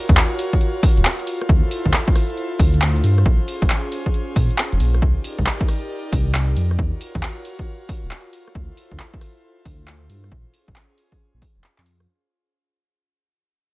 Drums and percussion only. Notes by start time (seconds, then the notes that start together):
0.09 kick
0.17 clap, closed hi-hat
0.39 open hi-hat
0.53 kick, closed hi-hat
0.61 closed hi-hat
0.83 kick, open hi-hat
0.97 closed hi-hat
1.05 clap, closed hi-hat
1.19 closed hi-hat
1.27 open hi-hat
1.41 cross-stick, closed hi-hat
1.49 kick, closed hi-hat
1.71 open hi-hat
1.86 kick
1.93 clap, closed hi-hat
2.08 kick
2.16 cross-stick, open hi-hat
2.30 closed hi-hat
2.38 closed hi-hat
2.59 kick, open hi-hat
2.74 closed hi-hat
2.82 clap, closed hi-hat
2.96 closed hi-hat
3.04 open hi-hat
3.18 cross-stick, closed hi-hat
3.26 kick, closed hi-hat
3.48 open hi-hat
3.62 kick
3.70 clap, closed hi-hat
3.92 open hi-hat
4.06 kick, closed hi-hat
4.14 closed hi-hat
4.36 kick, open hi-hat
4.51 closed hi-hat
4.58 clap, closed hi-hat
4.72 closed hi-hat
4.80 open hi-hat
4.94 cross-stick, closed hi-hat
5.02 kick
5.24 open hi-hat
5.39 kick
5.46 clap
5.61 kick
5.68 cross-stick, open hi-hat
6.12 kick, open hi-hat
6.34 clap
6.57 open hi-hat
6.71 cross-stick
6.79 kick
7.01 open hi-hat
7.15 kick
7.23 clap
7.45 open hi-hat
7.59 kick
7.89 kick, open hi-hat
8.11 clap
8.33 open hi-hat
8.48 cross-stick
8.55 kick
8.77 open hi-hat
8.92 kick
8.99 clap
9.14 kick
9.21 cross-stick, open hi-hat
9.65 kick, open hi-hat
9.88 clap
10.10 open hi-hat
10.24 cross-stick
10.32 kick
10.54 open hi-hat
10.68 kick
10.76 clap
10.98 open hi-hat
11.12 kick
11.42 kick, open hi-hat
11.64 clap
11.78 clap
11.86 open hi-hat
12.00 cross-stick